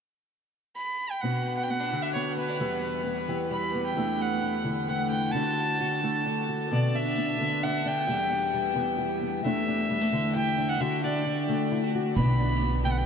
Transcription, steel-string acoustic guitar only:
1.23 B2 B3 D4 F#4
1.69 B3
1.80 D4
1.92 D3 F#4
2.15 B3
2.36 B3
2.48 D4
2.60 E2 G3 B3 G4
3.05 B3
3.28 E3 G4
3.51 G3
3.74 B3
3.96 E2 A3 D4 E4
4.42 D4
4.64 D3 E4
4.88 A3
5.12 D4
5.34 D3 D4 F#4
5.81 F#4
6.03 A3 F#4
6.25 D4
6.49 F#4
6.71 B2 B3 D4
6.95 D4
7.18 B3
7.40 D3 D4
7.63 D4
7.85 D4
8.07 E2 G3 B3 G4
8.31 B3
8.54 G3
8.75 E3 B3
8.98 G4
9.22 B3
9.44 E2 A3 D4 E4
9.68 D4
9.90 G3
10.01 A3
10.12 D3 D4
10.36 E4
10.58 D4
10.80 D3 D4 F#4
11.04 F#4
11.26 D4
11.48 A3 F#4
11.71 E4
11.83 F#4
11.95 F#4
12.17 B2 B3 D4
12.39 D4
12.62 B3
12.84 D3 D4

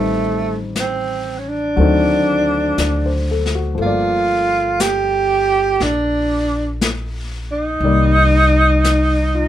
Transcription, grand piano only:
Already playing: D#3 G3 C4 B4
1.76 F#3 A3 C4
1.81 D#3
2.80 D5
3.06 C5
3.31 A4
3.55 F#4
3.75 F3 A3
3.82 A#3
3.86 D5
7.84 D#3 G3 A#3 D5
8.86 D#4
9.35 F4

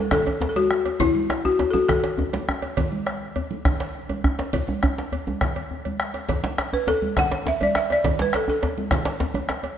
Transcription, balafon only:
Already playing: A4
0.12 A4
0.49 A4
0.56 F#4
1.00 E4
1.45 F#4
1.71 F#4 A4
1.89 A4
6.74 B4
6.88 A4
7.19 F#5
7.48 E5
7.63 D5
7.77 E5
7.92 D5
8.22 B4
8.36 A4
8.50 A4

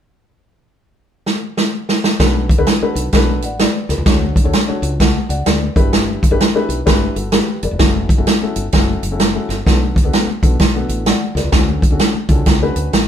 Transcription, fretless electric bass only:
2.20 B1
2.58 D2
2.82 muted fretless electric bass stroke
2.95 B1
3.13 B1
3.43 A1
3.89 C#2
3.98 C#2
4.06 D2
4.45 D2
4.69 muted fretless electric bass stroke
4.82 C#2
5.29 C#2
5.46 D2
5.76 G1
6.31 G1
6.54 muted fretless electric bass stroke
6.69 B1
6.87 G1
7.16 G1
7.63 F#1
7.71 E1
7.79 F#1
8.18 G1
8.42 muted fretless electric bass stroke
8.56 G1
8.73 F#1
9.03 F#1
9.49 G1
9.66 B1
10.03 D2
10.27 muted fretless electric bass stroke
10.43 B1
10.60 B1
10.89 A1
11.35 C#2
11.44 C#2
11.52 D2
11.90 D2
12.14 muted fretless electric bass stroke
12.29 C#2
12.46 C#2
12.76 D2
12.93 A1

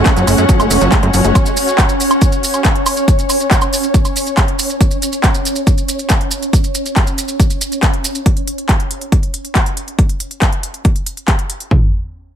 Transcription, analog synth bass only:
0.17 F#1
0.27 F#1
0.38 F#2
0.60 F#1
0.71 E1
0.81 F#1
1.03 F#2
1.14 F#1
1.24 F#1

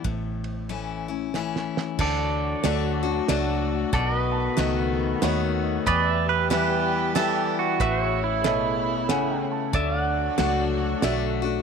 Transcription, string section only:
1.99 F#3 A3 D4 F#4
3.94 D#3 A3 B3
5.87 E3 G3 G4
7.80 C#3 A3 E4
9.74 F#3 D4 F#4

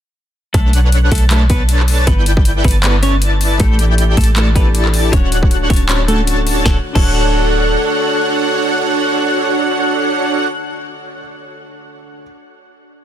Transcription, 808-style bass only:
0.54 B1
1.12 B1
2.07 G1
2.65 G1
3.60 A1
4.17 A1
5.13 D1
5.70 D1
6.66 D1
6.95 D1

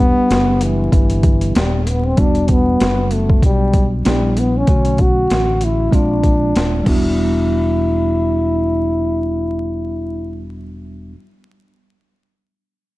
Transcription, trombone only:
Already playing: B3
0.63 E3
1.57 G3
1.88 B3
2.06 C4
2.20 D4
2.51 B3
3.13 A3
3.45 G3
4.07 G3
4.39 B3
4.57 C#4
5.01 F#4
5.64 E4
5.95 D4
6.88 E4

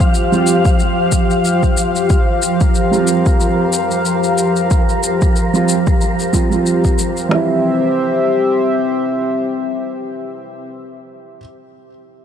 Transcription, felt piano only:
Already playing: F3 G3 C4 F4
0.32 F3 G3 C4 F4
2.91 F3 G3 C4
2.95 F4
5.53 F3 G3 C4 F4
6.33 F3 G3 C4 F4
6.50 F3 G3 C4 F4
7.29 E3 G3 C4
7.35 E4

